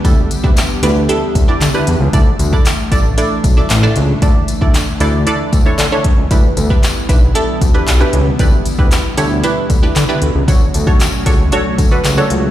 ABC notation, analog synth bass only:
X:1
M:4/4
L:1/16
Q:1/4=115
K:Edor
V:1 name="Analog synth bass" clef=bass
D,,2 z D,,2 z D,,3 z D,,2 D, z E,, C,, | D,,2 D,,2 z2 A,,,3 z B,,,2 A,,,2 C,,2 | D,,2 z D,,2 z D,,3 z D,,2 D, z D,, C,, | D,,2 D,,2 z2 B,,,3 z D,,2 B,,,2 C,,2 |
D,,2 z D,,2 z D,,3 z D,,2 D, z D,, C,, | D,,2 D,,2 z2 C,,3 z D,,2 C,,2 C,,2 |]